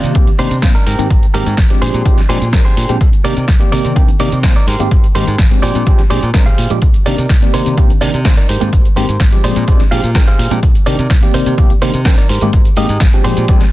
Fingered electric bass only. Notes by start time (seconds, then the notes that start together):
0.04 C3
0.15 C2
0.28 muted fingered electric bass stroke
0.39 C3
0.51 C3
0.63 C2
0.87 G#2
0.99 G#2
1.11 G#1
1.34 G#2
1.47 G#2
1.58 G#1
1.82 A#2
1.94 A#2
2.06 A#1
2.18 muted fingered electric bass stroke
2.29 A#2
2.41 A#2
2.53 A#1
2.77 A#2
2.89 A#2
3.01 C2
3.25 C3
3.37 C3
3.49 C2
3.73 C3
3.85 C3
3.96 C2
4.09 muted fingered electric bass stroke
4.20 C3
4.32 C3
4.44 C2
4.67 G#2
4.80 G#2
4.91 G#1
5.04 muted fingered electric bass stroke
5.15 G#2
5.27 G#2
5.39 G#1
5.63 A#2
5.75 A#2
5.87 A#1
5.99 muted fingered electric bass stroke
6.11 A#2
6.23 A#2
6.34 A#1
6.58 A#2
6.71 A#2
6.82 C2
6.95 muted fingered electric bass stroke
7.06 C3
7.18 C3
7.30 C2
7.54 C3
7.66 C3
7.78 C2
7.90 muted fingered electric bass stroke
8.02 C3
8.14 C3
8.25 C2
8.49 G#2
8.62 G#2
8.73 G#1
8.85 muted fingered electric bass stroke
8.97 G#2
9.09 G#2
9.20 G#1
9.44 A#2
9.56 A#2
9.68 A#1
9.80 muted fingered electric bass stroke
9.92 A#2
10.04 A#2
10.15 A#1
10.39 A#2
10.51 A#2
10.63 C2
10.75 muted fingered electric bass stroke
10.87 C3
10.99 C3
11.11 C2
11.34 C3
11.46 C3
11.58 C2
11.70 muted fingered electric bass stroke
11.82 C3
11.94 C3
12.06 C2
12.30 G#2
12.41 G#2
12.53 G#1
12.77 G#2
12.89 G#2
13.01 G#1
13.25 A#2
13.37 A#2
13.49 A#1
13.61 muted fingered electric bass stroke